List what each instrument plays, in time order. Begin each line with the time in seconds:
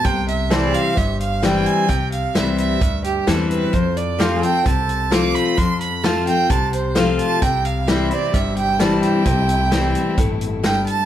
0.05 upright bass C2, steel-string acoustic guitar C3, fiddle G5, kick, closed hi-hat
0.28 fiddle E5, closed hi-hat
0.50 steel-string acoustic guitar E3 G3 C4 E4, pedal steel guitar A4 C5, fiddle D5, snare, closed hi-hat
0.74 pedal steel guitar G4, fiddle F5, closed hi-hat
0.97 upright bass G1, steel-string acoustic guitar G2, fiddle E5, kick, closed hi-hat
1.20 fiddle F5, closed hi-hat
1.43 steel-string acoustic guitar E3 G3 C4 E4, fiddle G5, snare, closed hi-hat
1.66 fiddle G#5, closed hi-hat
1.89 upright bass C2, steel-string acoustic guitar C3, fiddle G5, kick, closed hi-hat
2.12 fiddle F5, closed hi-hat
2.35 upright bass C2, steel-string acoustic guitar E3 G3 C4 E4, fiddle E5, snare, closed hi-hat
2.58 fiddle E5, closed hi-hat
2.81 upright bass D2, steel-string acoustic guitar G2, kick, closed hi-hat
3.04 fiddle G4, closed hi-hat
3.27 upright bass E2, steel-string acoustic guitar E3 G3 C4 E4, fiddle A4, snare, closed hi-hat
3.51 fiddle B4, closed hi-hat
3.73 steel-string acoustic guitar F2, upright bass F2, fiddle C5, kick, closed hi-hat
3.97 fiddle D5, closed hi-hat
4.19 steel-string acoustic guitar F3 A3 C4 F4, pedal steel guitar G4 C5, fiddle F5, snare, closed hi-hat
4.42 steel-string acoustic guitar C4 F4, pedal steel guitar A4, fiddle G5, closed hi-hat
4.66 upright bass C2, steel-string acoustic guitar C3, fiddle A5, kick, closed hi-hat
4.89 closed hi-hat
5.11 steel-string acoustic guitar F3 A3 C4 F4, fiddle D6, snare, closed hi-hat
5.35 fiddle B5, closed hi-hat
5.57 steel-string acoustic guitar F2, upright bass F2, fiddle C6, kick, closed hi-hat
5.81 fiddle B5, closed hi-hat
6.04 steel-string acoustic guitar F3 A3 C4 F4, fiddle A5, snare, closed hi-hat
6.26 steel-string acoustic guitar C4 F4, fiddle G5, closed hi-hat
6.50 upright bass C2, steel-string acoustic guitar C3, fiddle A5, kick, closed hi-hat
6.73 fiddle C5, closed hi-hat
6.95 steel-string acoustic guitar F3 A3 C4 F4, fiddle F5, snare, closed hi-hat
7.19 fiddle A5, closed hi-hat
7.42 upright bass C2, steel-string acoustic guitar C3, string section C3 G3 E4, fiddle G5, kick, closed hi-hat
7.65 fiddle F5, closed hi-hat
7.87 steel-string acoustic guitar E3 G3 C4 E4, pedal steel guitar G4 C5, fiddle E5, snare, closed hi-hat
8.10 steel-string acoustic guitar C4 E4, fiddle D5, closed hi-hat
8.34 upright bass G1, steel-string acoustic guitar G2, fiddle E5, kick, closed hi-hat
8.57 fiddle G5, closed hi-hat
8.80 steel-string acoustic guitar E3 G3 C4 E4, fiddle A5, snare, closed hi-hat
9.03 fiddle G5, closed hi-hat
9.26 upright bass C2, steel-string acoustic guitar C3, string section A3, kick, closed hi-hat
9.49 closed hi-hat
9.71 steel-string acoustic guitar E3 G3 C4 E4, snare, closed hi-hat
9.95 closed hi-hat
10.18 upright bass G1, steel-string acoustic guitar A2, kick, closed hi-hat
10.41 closed hi-hat
10.63 steel-string acoustic guitar G2, fiddle G5, snare, closed hi-hat
10.86 fiddle A5, closed hi-hat